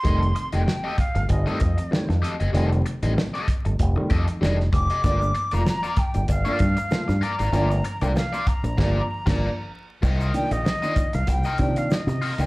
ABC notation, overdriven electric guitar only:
X:1
M:4/4
L:1/16
Q:"Swing 16ths" 1/4=96
K:Fmix
V:1 name="Overdriven electric guitar"
[GAe] z2 [GAe] z [GAe] z3 [GAe] z4 [GAe] [GAe] | [GAe] z2 [GAe] z [GAe] z4 [GAe] z [GAe] z2 [GAe] | [FBd] z2 [FBd] z [FBd] z3 [FBd] z4 [FBd] [FBd] | [FBd] z2 [FBd] z [FBd] z2 [FBd]2 z [FBd]2 z3 |
[FBe]2 z3 [FBe] z3 [FBe] z4 [FBe] [FBe] |]